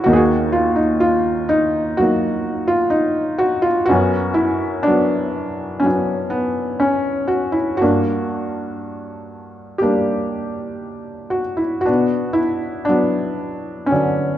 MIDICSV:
0, 0, Header, 1, 2, 480
1, 0, Start_track
1, 0, Key_signature, 2, "minor"
1, 0, Tempo, 958466
1, 39, Time_signature, 4, 2, 24, 8
1, 1958, Tempo, 978793
1, 3878, Tempo, 1013514
1, 6982, End_track
2, 0, Start_track
2, 0, Title_t, "Felt piano"
2, 0, Program_c, 0, 0
2, 0, Control_c, 0, 64, 127
2, 18, Note_on_c, 0, 66, 75
2, 30, Note_on_c, 0, 39, 58
2, 30, Note_on_c, 0, 63, 60
2, 32, Note_on_c, 0, 58, 54
2, 45, Control_c, 0, 64, 0
2, 64, Note_off_c, 0, 66, 0
2, 65, Note_on_c, 0, 68, 67
2, 80, Note_on_c, 0, 66, 74
2, 103, Note_off_c, 0, 68, 0
2, 146, Control_c, 0, 64, 127
2, 263, Note_on_c, 0, 65, 73
2, 274, Note_off_c, 0, 66, 0
2, 372, Note_off_c, 0, 63, 0
2, 379, Note_on_c, 0, 63, 68
2, 397, Note_off_c, 0, 65, 0
2, 502, Note_on_c, 0, 65, 74
2, 515, Note_off_c, 0, 63, 0
2, 734, Note_off_c, 0, 65, 0
2, 746, Note_on_c, 0, 63, 79
2, 979, Note_off_c, 0, 58, 0
2, 988, Note_on_c, 0, 66, 75
2, 997, Note_off_c, 0, 63, 0
2, 998, Note_on_c, 0, 54, 46
2, 1002, Note_on_c, 0, 58, 42
2, 1004, Note_on_c, 0, 63, 49
2, 1340, Note_on_c, 0, 65, 76
2, 1365, Note_off_c, 0, 66, 0
2, 1445, Note_off_c, 0, 63, 0
2, 1453, Note_on_c, 0, 63, 72
2, 1460, Note_off_c, 0, 65, 0
2, 1695, Note_on_c, 0, 66, 83
2, 1712, Note_off_c, 0, 63, 0
2, 1813, Note_on_c, 0, 65, 74
2, 1830, Note_off_c, 0, 66, 0
2, 1931, Note_on_c, 0, 66, 90
2, 1933, Note_off_c, 0, 39, 0
2, 1936, Note_off_c, 0, 54, 0
2, 1936, Note_off_c, 0, 65, 0
2, 1937, Note_off_c, 0, 58, 0
2, 1948, Note_on_c, 0, 59, 58
2, 1948, Note_on_c, 0, 61, 61
2, 1958, Note_on_c, 0, 42, 59
2, 1963, Control_c, 0, 64, 0
2, 2052, Control_c, 0, 64, 127
2, 2163, Note_off_c, 0, 66, 0
2, 2170, Note_on_c, 0, 64, 75
2, 2409, Note_on_c, 0, 62, 85
2, 2421, Note_off_c, 0, 59, 0
2, 2428, Note_off_c, 0, 64, 0
2, 2429, Note_on_c, 0, 59, 55
2, 2432, Note_on_c, 0, 54, 58
2, 2876, Note_off_c, 0, 61, 0
2, 2882, Note_off_c, 0, 62, 0
2, 2883, Note_on_c, 0, 61, 70
2, 2891, Note_off_c, 0, 54, 0
2, 2898, Note_on_c, 0, 54, 54
2, 2905, Note_off_c, 0, 59, 0
2, 2907, Note_off_c, 0, 54, 0
2, 2909, Note_off_c, 0, 61, 0
2, 2912, Note_on_c, 0, 59, 41
2, 2914, Note_on_c, 0, 54, 42
2, 2916, Note_on_c, 0, 61, 49
2, 3123, Note_off_c, 0, 59, 0
2, 3130, Note_on_c, 0, 59, 68
2, 3366, Note_off_c, 0, 61, 0
2, 3373, Note_on_c, 0, 61, 71
2, 3391, Note_off_c, 0, 59, 0
2, 3608, Note_off_c, 0, 61, 0
2, 3609, Note_on_c, 0, 66, 71
2, 3729, Note_on_c, 0, 64, 62
2, 3747, Note_off_c, 0, 66, 0
2, 3852, Note_on_c, 0, 66, 75
2, 3857, Note_off_c, 0, 42, 0
2, 3858, Note_off_c, 0, 54, 0
2, 3867, Note_off_c, 0, 64, 0
2, 3872, Note_on_c, 0, 62, 54
2, 3873, Note_on_c, 0, 58, 58
2, 3878, Note_on_c, 0, 43, 50
2, 3883, Control_c, 0, 64, 0
2, 3963, Control_c, 0, 64, 127
2, 4796, Note_off_c, 0, 66, 0
2, 4805, Note_on_c, 0, 67, 66
2, 4806, Note_off_c, 0, 58, 0
2, 4806, Note_off_c, 0, 62, 0
2, 4820, Note_on_c, 0, 58, 51
2, 4826, Note_on_c, 0, 55, 37
2, 4826, Note_on_c, 0, 62, 51
2, 5525, Note_on_c, 0, 66, 62
2, 5568, Note_off_c, 0, 67, 0
2, 5650, Note_on_c, 0, 64, 52
2, 5666, Note_off_c, 0, 66, 0
2, 5765, Note_on_c, 0, 66, 75
2, 5775, Note_off_c, 0, 64, 0
2, 5776, Note_off_c, 0, 58, 0
2, 5779, Note_off_c, 0, 55, 0
2, 5779, Note_off_c, 0, 62, 0
2, 5780, Note_off_c, 0, 43, 0
2, 5787, Note_on_c, 0, 62, 54
2, 5788, Note_on_c, 0, 59, 54
2, 5796, Note_on_c, 0, 47, 50
2, 5805, Control_c, 0, 64, 0
2, 5875, Control_c, 0, 64, 127
2, 6013, Note_on_c, 0, 64, 70
2, 6030, Note_off_c, 0, 66, 0
2, 6249, Note_off_c, 0, 64, 0
2, 6250, Note_off_c, 0, 62, 0
2, 6257, Note_on_c, 0, 62, 72
2, 6272, Note_off_c, 0, 59, 0
2, 6276, Note_on_c, 0, 54, 53
2, 6279, Note_on_c, 0, 59, 50
2, 6738, Note_on_c, 0, 61, 72
2, 6750, Note_off_c, 0, 54, 0
2, 6754, Note_off_c, 0, 59, 0
2, 6757, Note_on_c, 0, 54, 41
2, 6761, Note_on_c, 0, 59, 36
2, 6763, Note_off_c, 0, 62, 0
2, 6763, Note_on_c, 0, 50, 45
2, 6969, Note_off_c, 0, 61, 0
2, 6973, Note_off_c, 0, 59, 0
2, 6982, Note_off_c, 0, 47, 0
2, 6982, Note_off_c, 0, 50, 0
2, 6982, Note_off_c, 0, 54, 0
2, 6982, End_track
0, 0, End_of_file